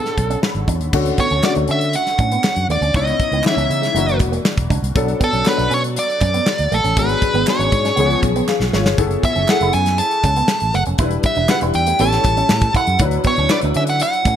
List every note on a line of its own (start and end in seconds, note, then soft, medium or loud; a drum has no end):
0.00 0.93 D3 medium
0.00 0.95 G#3 medium
0.00 0.94 C#4 medium
0.00 0.94 F#4 medium
0.00 0.39 A4 medium
0.06 snare soft
0.06 closed hi-hat soft
0.17 0.35 B1 medium
0.17 muted clean electric guitar stroke soft
0.17 kick medium
0.17 closed hi-hat medium
0.30 0.39 C#4 medium
0.30 closed hi-hat medium
0.43 0.90 B5 medium
0.43 snare loud
0.55 0.64 G#1 medium
0.55 closed hi-hat soft
0.68 0.80 E2 medium
0.68 0.77 D4 medium
0.68 kick medium
0.68 closed hi-hat medium
0.80 0.89 D#2 medium
0.80 closed hi-hat soft
0.93 1.10 D2 loud
0.93 1.28 D3 medium
0.93 1.28 A3 medium
0.93 1.29 C#4 medium
0.93 1.29 F#4 medium
0.93 kick loud
0.93 crash medium
1.06 muted clean electric guitar stroke soft
1.06 closed hi-hat medium
1.18 1.27 B3 medium
1.18 1.43 C#5 medium
1.18 kick medium
1.18 closed hi-hat medium
1.30 1.40 D2 medium
1.30 1.40 C#4 medium
1.30 closed hi-hat soft
1.43 2.13 D3 medium
1.43 2.13 A3 medium
1.43 2.13 C#4 medium
1.43 2.14 F#4 medium
1.43 1.52 D5 medium
1.43 snare medium
1.43 clap medium
1.55 1.65 D2 medium
1.55 1.65 D4 medium
1.55 closed hi-hat soft
1.68 1.95 D3 medium
1.68 1.77 C#4 medium
1.68 1.96 E5 loud
1.68 closed hi-hat medium
1.81 closed hi-hat medium
1.93 2.66 F#5 loud
1.93 muted clean electric guitar stroke soft
1.93 closed hi-hat medium
2.07 snare soft
2.07 closed hi-hat soft
2.19 2.36 A2 medium
2.19 2.28 C#4 medium
2.19 kick medium
2.19 clap medium
2.19 closed hi-hat medium
2.32 2.40 B3 medium
2.32 closed hi-hat medium
2.44 muted clean electric guitar stroke soft
2.44 snare loud
2.44 clap medium
2.56 2.65 F#2 medium
2.56 closed hi-hat medium
2.68 2.77 D#2 medium
2.68 2.78 A3 medium
2.68 2.96 D5 medium
2.68 closed hi-hat medium
2.81 2.90 D2 medium
2.81 2.91 C#4 medium
2.81 closed hi-hat soft
2.94 3.12 C#2 loud
2.94 3.30 B3 medium
2.94 3.03 C#4 medium
2.94 3.30 C#4 medium
2.94 3.29 D#4 medium
2.94 3.30 E4 medium
2.94 3.42 D#5 medium
2.94 kick loud
2.94 closed hi-hat medium
3.07 closed hi-hat medium
3.20 muted clean electric guitar stroke soft
3.20 kick medium
3.20 closed hi-hat medium
3.32 3.40 C#2 medium
3.32 3.41 B3 medium
3.32 closed hi-hat soft
3.44 3.94 E3 medium
3.44 3.95 B3 medium
3.44 3.95 C#4 medium
3.44 3.51 D#4 medium
3.44 4.17 E5 medium
3.44 snare loud
3.44 clap medium
3.52 3.99 E4 medium
3.57 3.66 C#2 medium
3.57 3.66 C#4 medium
3.57 closed hi-hat soft
3.70 3.87 C#3 medium
3.70 muted clean electric guitar stroke soft
3.70 closed hi-hat medium
3.82 3.91 G#3 medium
3.82 snare soft
3.82 closed hi-hat medium
3.94 4.20 F#1 loud
3.94 4.76 E3 medium
3.94 4.03 A3 medium
3.94 4.76 A#3 medium
3.94 4.76 D4 medium
3.94 4.76 F#4 medium
3.94 closed hi-hat medium
4.08 closed hi-hat soft
4.20 4.37 E1 medium
4.20 muted clean electric guitar stroke soft
4.20 kick medium
4.20 clap medium
4.20 closed hi-hat medium
4.32 4.41 A#3 medium
4.32 closed hi-hat medium
4.45 snare loud
4.45 clap medium
4.57 4.66 E1 medium
4.57 kick medium
4.57 closed hi-hat medium
4.70 4.79 C#2 medium
4.70 4.79 D4 medium
4.70 kick medium
4.70 closed hi-hat medium
4.82 4.91 C2 medium
4.82 closed hi-hat medium
4.95 5.13 B1 loud
4.95 5.30 F#3 medium
4.95 5.30 B3 medium
4.95 5.31 D4 medium
4.95 5.31 A4 medium
4.95 kick loud
4.95 closed hi-hat medium
5.08 muted clean electric guitar stroke soft
5.08 closed hi-hat medium
5.20 5.29 B3 medium
5.20 5.48 A4 medium
5.20 kick medium
5.20 closed hi-hat medium
5.33 5.42 B1 medium
5.33 5.42 C#4 medium
5.33 closed hi-hat soft
5.45 6.15 F#3 medium
5.45 6.15 B3 medium
5.45 6.16 D4 medium
5.45 6.16 A4 medium
5.45 5.73 B4 medium
5.45 muted clean electric guitar stroke soft
5.45 snare loud
5.45 clap medium
5.57 5.67 B1 medium
5.57 5.66 D4 medium
5.57 closed hi-hat medium
5.70 5.97 B2 medium
5.70 5.79 C#4 medium
5.70 5.80 C#5 loud
5.70 closed hi-hat medium
5.84 closed hi-hat medium
5.96 6.75 D5 loud
5.96 muted clean electric guitar stroke soft
5.96 closed hi-hat medium
6.10 closed hi-hat soft
6.21 6.39 F#2 medium
6.21 6.30 C#4 medium
6.21 kick medium
6.21 clap medium
6.21 closed hi-hat medium
6.34 6.43 B3 medium
6.34 closed hi-hat medium
6.46 muted clean electric guitar stroke soft
6.46 snare loud
6.46 clap medium
6.58 6.68 D2 medium
6.58 closed hi-hat medium
6.72 6.80 A#1 medium
6.72 6.80 A3 medium
6.72 6.99 A4 medium
6.72 closed hi-hat medium
6.84 6.93 A1 medium
6.84 6.93 C#4 medium
6.84 closed hi-hat medium
6.97 7.14 G#1 medium
6.97 7.32 F#3 medium
6.97 7.05 G#3 medium
6.97 7.32 B3 medium
6.97 7.32 D4 medium
6.97 7.32 G#4 medium
6.97 7.45 B4 medium
6.97 kick loud
6.97 closed hi-hat loud
7.09 closed hi-hat soft
7.21 muted clean electric guitar stroke soft
7.21 kick medium
7.21 closed hi-hat medium
7.34 7.43 G#1 medium
7.34 7.43 B3 medium
7.34 closed hi-hat soft
7.47 7.97 F#3 medium
7.47 7.97 B3 medium
7.47 7.98 D4 medium
7.47 7.97 G#4 medium
7.47 8.20 C#5 medium
7.47 snare medium
7.47 clap medium
7.59 7.68 G#1 medium
7.59 7.68 C#4 medium
7.59 closed hi-hat medium
7.72 7.90 G#2 medium
7.72 muted clean electric guitar stroke soft
7.72 kick medium
7.72 closed hi-hat medium
7.85 7.93 C#4 medium
7.85 snare soft
7.85 closed hi-hat medium
7.96 8.15 C#2 loud
7.96 8.04 E3 medium
7.96 8.05 B3 medium
7.96 8.78 B3 medium
7.96 8.78 C#4 medium
7.96 8.48 G#4 medium
7.96 closed hi-hat medium
8.04 8.81 F3 medium
8.10 closed hi-hat soft
8.22 8.40 B1 medium
8.22 muted clean electric guitar stroke soft
8.22 kick medium
8.22 clap medium
8.22 closed hi-hat medium
8.36 8.44 B3 medium
8.36 closed hi-hat medium
8.48 8.72 G#4 medium
8.48 8.72 F5 medium
8.48 snare medium
8.48 clap medium
8.60 8.69 B1 medium
8.60 snare medium
8.72 8.85 G#1 medium
8.72 8.82 G#3 medium
8.72 9.22 F4 medium
8.72 9.21 C#5 medium
8.72 snare medium
8.85 8.94 G1 medium
8.85 snare medium
8.98 9.15 F#1 medium
8.98 9.33 B3 medium
8.98 9.33 E4 medium
8.98 9.33 G#4 medium
8.98 9.33 A4 medium
8.98 kick loud
8.98 closed hi-hat loud
9.11 muted clean electric guitar stroke soft
9.11 closed hi-hat medium
9.23 9.32 B3 medium
9.23 9.50 E5 medium
9.23 kick medium
9.23 closed hi-hat medium
9.36 9.45 F#1 medium
9.36 9.44 C#4 medium
9.36 closed hi-hat soft
9.48 10.19 B3 medium
9.48 10.19 E4 medium
9.48 10.18 G#4 medium
9.48 10.19 A4 medium
9.48 9.73 F#5 medium
9.48 muted clean electric guitar stroke soft
9.48 snare loud
9.48 clap medium
9.61 9.70 F#1 medium
9.61 9.70 E4 medium
9.61 closed hi-hat soft
9.73 10.00 F#2 medium
9.73 9.82 C#4 medium
9.73 10.00 G#5 medium
9.73 closed hi-hat medium
9.86 snare soft
9.86 closed hi-hat medium
9.98 10.76 A5 loud
9.98 muted clean electric guitar stroke soft
9.98 closed hi-hat medium
10.11 closed hi-hat soft
10.24 10.41 C#2 medium
10.24 10.32 C#4 medium
10.24 kick medium
10.24 clap medium
10.24 closed hi-hat medium
10.36 10.45 B3 medium
10.36 closed hi-hat medium
10.48 muted clean electric guitar stroke soft
10.48 snare loud
10.48 clap medium
10.60 10.70 A1 medium
10.60 closed hi-hat medium
10.74 10.83 F#1 medium
10.74 10.83 A3 medium
10.74 10.82 F#5 medium
10.74 closed hi-hat medium
10.86 10.95 F1 medium
10.86 10.95 C#4 medium
10.86 closed hi-hat soft
10.98 11.16 E1 loud
10.98 11.34 G3 medium
10.98 11.34 D4 medium
10.98 11.08 E4 medium
10.98 11.34 E4 medium
10.98 11.35 B4 medium
10.98 kick loud
10.98 closed hi-hat loud
11.11 closed hi-hat medium
11.23 11.48 E5 medium
11.23 muted clean electric guitar stroke soft
11.23 kick medium
11.23 closed hi-hat medium
11.35 11.45 E1 medium
11.35 11.45 D4 medium
11.35 closed hi-hat soft
11.49 11.98 G3 medium
11.49 12.00 D4 medium
11.49 11.99 E4 medium
11.49 12.00 B4 medium
11.49 11.57 F#5 medium
11.49 snare loud
11.49 clap medium
11.61 11.71 E1 medium
11.61 11.71 E4 medium
11.61 closed hi-hat medium
11.74 11.92 E2 medium
11.74 12.01 G5 loud
11.74 muted clean electric guitar stroke soft
11.74 closed hi-hat medium
11.86 11.96 A3 medium
11.86 closed hi-hat medium
11.99 12.17 A1 loud
11.99 12.80 G3 medium
11.99 12.08 B3 medium
11.99 12.80 C#4 medium
11.99 12.80 E4 medium
11.99 12.81 A4 medium
11.99 12.71 A5 loud
11.99 closed hi-hat loud
12.12 snare soft
12.12 closed hi-hat soft
12.24 12.42 A1 medium
12.24 muted clean electric guitar stroke soft
12.24 kick medium
12.24 clap medium
12.24 closed hi-hat medium
12.37 12.46 C#4 medium
12.37 closed hi-hat medium
12.49 12.67 A2 loud
12.49 snare loud
12.49 clap medium
12.61 kick medium
12.61 closed hi-hat medium
12.74 12.84 E4 medium
12.74 12.99 F#5 medium
12.74 kick medium
12.74 closed hi-hat medium
12.87 12.96 F#2 medium
12.87 closed hi-hat soft
12.99 13.17 D2 loud
12.99 13.35 F#3 medium
12.99 13.35 D4 medium
12.99 13.35 E4 medium
12.99 13.35 B4 medium
12.99 kick loud
12.99 closed hi-hat loud
13.11 muted clean electric guitar stroke soft
13.11 closed hi-hat medium
13.24 13.34 B3 medium
13.24 13.51 C#5 medium
13.24 kick medium
13.24 closed hi-hat medium
13.36 13.46 D2 medium
13.36 13.47 C#4 medium
13.36 closed hi-hat soft
13.49 14.19 F#3 medium
13.49 14.19 D4 medium
13.49 14.20 E4 medium
13.49 14.20 B4 medium
13.49 13.58 D5 medium
13.49 snare loud
13.49 clap medium
13.61 13.72 D2 medium
13.61 13.72 D4 medium
13.61 closed hi-hat medium
13.74 14.02 D3 loud
13.74 13.85 C#4 medium
13.74 13.82 E5 loud
13.74 closed hi-hat medium
13.87 14.02 F#5 medium
13.87 closed hi-hat medium
14.00 14.36 F#5 medium
14.00 muted clean electric guitar stroke soft
14.00 closed hi-hat medium
14.13 closed hi-hat soft
14.25 14.36 A2 loud
14.25 14.35 C#4 medium
14.25 kick medium
14.25 clap medium
14.25 closed hi-hat medium